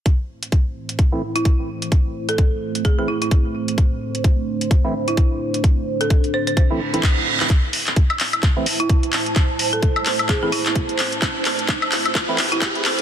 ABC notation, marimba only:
X:1
M:4/4
L:1/16
Q:"Swing 16ths" 1/4=129
K:Am
V:1 name="Marimba"
z8 z3 E4 z | z3 A4- A ^G G E E z4 | z8 z3 E4 z | z3 A3 c c c z6 z |
z8 z3 E4 z | z3 A4- A ^G G E E z4 | z8 z3 E4 z |]